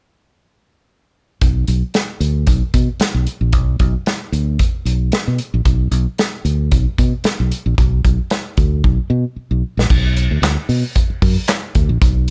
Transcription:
1.41 fingered electric bass B1, kick, closed hi-hat
1.67 fingered electric bass B1, closed hi-hat
1.94 snare, closed hi-hat
2.20 fingered electric bass D2, closed hi-hat
2.47 fingered electric bass B1, kick, closed hi-hat
2.74 fingered electric bass B2, kick, closed hi-hat
2.99 muted fingered electric bass stroke, snare, closed hi-hat
3.14 fingered electric bass B1
3.27 closed hi-hat
3.41 fingered electric bass A#1
3.53 fingered electric bass B1, kick, closed hi-hat
3.79 fingered electric bass B1, kick, closed hi-hat
4.06 snare, closed hi-hat
4.32 fingered electric bass D2, closed hi-hat
4.59 kick, closed hi-hat
4.85 fingered electric bass B1, closed hi-hat
5.12 snare, closed hi-hat
5.27 fingered electric bass B2
5.38 closed hi-hat
5.54 fingered electric bass A#1
5.65 fingered electric bass B1, kick, closed hi-hat
5.91 fingered electric bass B1, closed hi-hat
6.18 snare, closed hi-hat
6.45 fingered electric bass D2, closed hi-hat
6.71 fingered electric bass B1, kick, closed hi-hat
6.98 fingered electric bass B2, kick, closed hi-hat
7.24 muted fingered electric bass stroke, snare, closed hi-hat
7.40 fingered electric bass B1
7.51 closed hi-hat
7.66 fingered electric bass A#1
7.78 fingered electric bass B1, kick, closed hi-hat
8.04 fingered electric bass B1, kick, closed hi-hat
8.30 snare, closed hi-hat
8.57 fingered electric bass D2, kick, closed hi-hat
8.84 fingered electric bass B1, kick
9.10 fingered electric bass B2
9.36 muted fingered electric bass stroke
9.51 fingered electric bass B1
9.77 fingered electric bass A#1, snare
9.90 fingered electric bass B1, kick, crash
10.17 closed hi-hat
10.31 fingered electric bass D2
10.42 fingered electric bass D2, snare, clap, closed hi-hat
10.69 fingered electric bass B2, open hi-hat
10.95 kick, closed hi-hat
11.10 muted fingered electric bass stroke
11.22 fingered electric bass F#2, kick, open hi-hat
11.48 snare, clap, closed hi-hat
11.75 fingered electric bass D2, kick, closed hi-hat
11.89 fingered electric bass A#1
12.01 fingered electric bass B1, kick, closed hi-hat

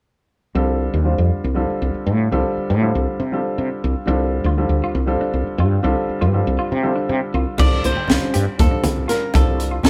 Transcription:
0.55 fretless electric bass C2, grand piano D3 G3 C4 F4 A4
0.94 fretless electric bass D#2
1.04 grand piano D3 G3 C4 F4 C5
1.18 fretless electric bass F2
1.44 fretless electric bass C2
1.54 grand piano D3 G3 C4 F4 A4
1.70 muted fretless electric bass stroke
1.82 fretless electric bass C2
1.94 muted fretless electric bass stroke
2.07 fretless electric bass A2
2.31 fretless electric bass C2, grand piano D3 G3 C4 F4 A4
2.57 muted fretless electric bass stroke
2.70 fretless electric bass A2
2.81 grand piano D3 G3 C4 F4 A4
2.95 fretless electric bass C2
3.20 fretless electric bass C3
3.32 grand piano D3 G3 C4 F4 A4
3.58 fretless electric bass C3
3.84 fretless electric bass C2
4.06 fretless electric bass C2, grand piano D3 G3 C4 F4 A4, clean electric guitar D4
4.44 fretless electric bass D2, clean electric guitar F4
4.57 grand piano D3 G3 C4 F4 A4
4.69 fretless electric bass D2
4.84 clean electric guitar F4
4.95 fretless electric bass C2
5.06 grand piano D3 G3 C4 F4 A4
5.20 clean electric guitar D4, muted fretless electric bass stroke
5.34 fretless electric bass C2
5.47 muted fretless electric bass stroke
5.58 fretless electric bass G2, clean electric guitar F4
5.83 fretless electric bass C2, grand piano D3 G3 C4 F4 A4, clean electric guitar D4
6.09 muted fretless electric bass stroke
6.21 fretless electric bass G2, clean electric guitar F4
6.33 grand piano D3 G3 C4 F4 A4
6.47 fretless electric bass C2
6.59 clean electric guitar F4
6.72 fretless electric bass C3
6.82 grand piano D3 G3 C4 F4 A4
6.96 clean electric guitar D4
7.09 fretless electric bass C3
7.34 fretless electric bass C2, clean electric guitar F4
7.58 fretless electric bass C2, grand piano D3 G3 C4 F4 A4, clean electric guitar D#4, nylon-string guitar D5, kick, crash, muted conga
7.84 fretless electric bass C2, nylon-string guitar C5, closed hi-hat
7.95 clean electric guitar G4, high conga, low conga
8.07 fretless electric bass C2, grand piano D3 G3 C4 F4 C5, snare, closed hi-hat, low conga
8.21 muted conga
8.34 fretless electric bass G2, clean electric guitar G4, closed hi-hat
8.46 muted fretless electric bass stroke
8.58 fretless electric bass D#2, grand piano D3 G3 C4 F4 C5, nylon-string guitar A4, kick, closed hi-hat
8.71 clean electric guitar D4
8.84 fretless electric bass C2, closed hi-hat, muted conga, high conga
8.96 low conga
9.08 clean electric guitar F4, nylon-string guitar A#4, snare, closed hi-hat
9.34 fretless electric bass C2, grand piano D3 G3 C4 F4 A4, clean electric guitar D#4, nylon-string guitar A4, kick, closed hi-hat, muted conga
9.47 fretless electric bass C2
9.60 closed hi-hat
9.71 clean electric guitar F4, low conga
9.83 fretless electric bass C2, grand piano D3 G3 C4 F4 A4, nylon-string guitar A4, snare, closed hi-hat, low conga

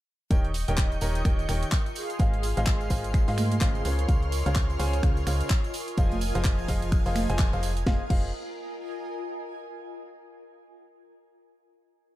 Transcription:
0.31 fm bass D#1, grand piano D#3 G4 A#4 C#5 D#5 G5, ambient pad F4, analog synth pad D#5 C#6 G6, kick, closed hi-hat, tambourine
0.44 ambient pad A#4, closed hi-hat
0.54 ambient pad D#5, open hi-hat, tambourine
0.68 fm bass D#1, grand piano D#3 G4 A#4 C#5 D#5 G5, closed hi-hat, tambourine
0.77 kick, clap, closed hi-hat, tambourine
0.90 ambient pad G5, closed hi-hat, tambourine
1.01 fm bass D#1, grand piano D#3 G4 A#4 C#5 D#5 A#5, open hi-hat, tambourine
1.15 closed hi-hat, tambourine
1.25 fm bass D#1, grand piano D#3 G4 A#4 C#5 D#5 G5, finger snap, kick, closed hi-hat, tambourine
1.39 closed hi-hat, tambourine
1.49 fm bass D#1, grand piano D#3 G4 A#4 C#5 D#5 G5, finger snap, open hi-hat, tambourine
1.62 closed hi-hat, tambourine
1.72 kick, clap, closed hi-hat, tambourine
1.86 closed hi-hat, tambourine
1.95 analog synth pad G#4 F5 C6, open hi-hat, tambourine
2.10 closed hi-hat, tambourine
2.19 fm bass G#1, grand piano G#3 F4 G#4 C5 D#5 F5, kick, closed hi-hat, tambourine
2.34 closed hi-hat
2.39 ambient pad G#5
2.43 open hi-hat, tambourine
2.57 fm bass G#1, grand piano G#3 F4 G#4 C5 D#5 F5, closed hi-hat, tambourine
2.66 kick, clap, closed hi-hat, tambourine
2.81 closed hi-hat, tambourine
2.90 fm bass G#1, grand piano G#3 F4 G#4 C5 D#5 F5, kick, open hi-hat, tambourine
3.04 closed hi-hat, tambourine
3.14 finger snap, kick, closed hi-hat, tambourine
3.28 fm bass G#2, grand piano G#3 F4 G#4 C5 D#5 F5, open hi-hat, tambourine
3.38 finger snap, open hi-hat, tambourine, high conga
3.51 closed hi-hat, tambourine, high conga
3.61 fm bass G#1, grand piano C#3 F4 G#4 C5 D#5 F5, kick, clap, closed hi-hat, tambourine
3.75 closed hi-hat, tambourine
3.85 fm bass C#2, grand piano C#3 F4 G#4 C5 C#5 F5, analog synth pad C#5 F6, open hi-hat, tambourine
3.98 closed hi-hat, tambourine
4.09 fm bass C#2, grand piano C#3 F4 G#4 C5 C#5 F5, kick, closed hi-hat, tambourine
4.23 closed hi-hat
4.32 open hi-hat, tambourine
4.46 fm bass C#2, grand piano C#3 F4 G#4 C5 C#5 F5, closed hi-hat, tambourine
4.55 kick, clap, closed hi-hat, tambourine
4.70 closed hi-hat, tambourine
4.79 fm bass C#2, grand piano C#3 F4 G#4 C5 C#5 G#5, open hi-hat, tambourine
4.93 closed hi-hat, tambourine
5.03 fm bass C#2, grand piano C#3 F4 G#4 C5 C#5 F5, finger snap, kick, closed hi-hat, tambourine
5.17 closed hi-hat, tambourine
5.27 fm bass C#2, grand piano C#3 F4 G#4 C5 C#5 F5, finger snap, open hi-hat, tambourine
5.41 closed hi-hat, tambourine
5.50 kick, clap, closed hi-hat, tambourine
5.64 closed hi-hat, tambourine
5.74 open hi-hat, tambourine
5.88 closed hi-hat, tambourine
5.97 fm bass F1, grand piano F3 F4 G#4 C5 D#5 F5, analog synth pad F5 D#6 G#6, kick, closed hi-hat, tambourine
6.12 closed hi-hat, tambourine, high conga
6.21 open hi-hat, tambourine
6.35 fm bass F1, grand piano F3 F4 G#4 C5 D#5 F5, closed hi-hat, tambourine
6.44 kick, clap, closed hi-hat, tambourine
6.59 closed hi-hat, tambourine
6.68 fm bass F1, grand piano F3 F4 G#4 C5 D#5 F5, kick, open hi-hat, tambourine
6.82 closed hi-hat, tambourine
6.92 finger snap, kick, closed hi-hat, tambourine
7.06 fm bass F1, grand piano F3 F4 G#4 C5 D#5 F5, open hi-hat, tambourine
7.15 finger snap, open hi-hat, tambourine, high conga
7.29 fm bass F1, grand piano F3 F4 G#4 C5 D#5 G#5, closed hi-hat, tambourine, high conga
7.39 kick, clap, closed hi-hat, tambourine
7.53 fm bass F1, grand piano F3 F4 G#4 C5 D#5 F5, closed hi-hat, tambourine
7.63 open hi-hat, tambourine
7.77 closed hi-hat, tambourine
7.87 fm bass F1, grand piano F4 G#4 C5 D#5 F5, ambient pad F4, analog synth pad F5 D#6, kick, snare
7.95 ambient pad A#4
8.02 ambient pad D#5
8.08 fm bass F1, grand piano F4 G#4 C5 D#5 F5, ambient pad G#5, kick, crash

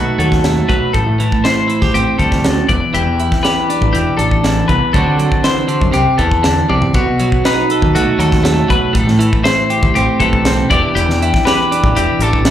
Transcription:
Already playing: clean electric guitar B2 F#3 A3 D#4 F#4 B4
0.18 fingered electric bass D#2, clean electric guitar F#3 A4, closed hi-hat
0.32 kick, snare
0.44 clean electric guitar A3, snare, closed hi-hat
0.69 fingered electric bass B1, clean electric guitar F#3 B4, kick, closed hi-hat
0.93 fingered electric bass A1, clean electric guitar A2 A4, kick, closed hi-hat
1.06 fingered electric bass A2
1.20 clean electric guitar E3, closed hi-hat
1.32 kick
1.44 clean electric guitar E4 C5, snare, closed hi-hat
1.68 clean electric guitar E4, closed hi-hat
1.82 fingered electric bass D2, clean electric guitar G4, kick, snare
1.94 fingered electric bass A1, clean electric guitar C4 G4, closed hi-hat
2.19 fingered electric bass D2, clean electric guitar G2 A4, kick, closed hi-hat
2.32 kick, snare
2.44 clean electric guitar F#2, snare, closed hi-hat
2.69 fingered electric bass E1, clean electric guitar E2 D5, kick, closed hi-hat
2.94 fingered electric bass E1, clean electric guitar E3 G4, closed hi-hat
3.06 fingered electric bass E2
3.20 clean electric guitar E4, closed hi-hat
3.32 kick, snare
3.43 clean electric guitar G4 B4, snare, closed hi-hat
3.70 clean electric guitar D4, closed hi-hat
3.81 fingered electric bass A1, kick
3.93 fingered electric bass E1, clean electric guitar E3 G4, closed hi-hat
4.17 fingered electric bass A1, clean electric guitar D4 A4, closed hi-hat
4.31 kick
4.44 clean electric guitar E3, snare, closed hi-hat
4.68 fingered electric bass C2, clean electric guitar E2 B4, kick, closed hi-hat
4.93 fingered electric bass D2, clean electric guitar D3 F#3 C4 D4 A4, kick, closed hi-hat
4.98 clean electric guitar F#4
5.07 fingered electric bass D3
5.18 clean electric guitar F#3, closed hi-hat
5.32 kick
5.44 clean electric guitar E3 C5, snare, closed hi-hat
5.68 clean electric guitar D3, closed hi-hat
5.81 fingered electric bass F#2, kick
5.92 fingered electric bass C2, clean electric guitar C3 G4, closed hi-hat
6.18 fingered electric bass E2, clean electric guitar E3 A4, kick, closed hi-hat
6.32 kick
6.43 clean electric guitar D3, snare, closed hi-hat
6.69 fingered electric bass C2, clean electric guitar C3 D5, high tom
6.82 floor tom
6.94 fingered electric bass B1, clean electric guitar B2 F#4, kick, closed hi-hat
7.06 fingered electric bass B2
7.19 clean electric guitar F#3, closed hi-hat
7.32 kick
7.45 clean electric guitar D#4 B4, snare, closed hi-hat
7.70 clean electric guitar A4, closed hi-hat
7.82 fingered electric bass D#2, kick
7.94 fingered electric bass B1, clean electric guitar A3 F#4, closed hi-hat
8.18 fingered electric bass D#2, clean electric guitar F#3 A4, closed hi-hat
8.32 kick, snare
8.44 clean electric guitar A3, snare, closed hi-hat
8.68 fingered electric bass B1, clean electric guitar F#3 B4, kick, closed hi-hat
8.93 fingered electric bass A1, clean electric guitar A2 A4, kick, closed hi-hat
9.07 fingered electric bass A2, snare
9.19 clean electric guitar E3, closed hi-hat
9.33 kick
9.44 clean electric guitar E4 C5, snare, closed hi-hat
9.70 clean electric guitar G4, closed hi-hat
9.83 fingered electric bass D2, kick
9.95 fingered electric bass A1, clean electric guitar C4 G4, closed hi-hat
10.19 fingered electric bass B1, clean electric guitar E3 A4, kick, closed hi-hat
10.33 kick
10.45 clean electric guitar C4, snare, closed hi-hat
10.70 fingered electric bass E1, clean electric guitar E2 E3 D4 E4 G4 D5, kick, closed hi-hat
10.95 fingered electric bass E1, clean electric guitar E3 G4, closed hi-hat
11.09 fingered electric bass E2, snare
11.22 clean electric guitar E4, closed hi-hat
11.34 kick, snare
11.45 clean electric guitar G4 B4, snare, closed hi-hat
11.72 clean electric guitar D4, closed hi-hat
11.83 fingered electric bass A1, kick
11.95 fingered electric bass E1, clean electric guitar E3 G4, closed hi-hat
12.19 fingered electric bass A1, clean electric guitar D4 A4, closed hi-hat
12.33 kick
12.45 clean electric guitar E3, snare, closed hi-hat

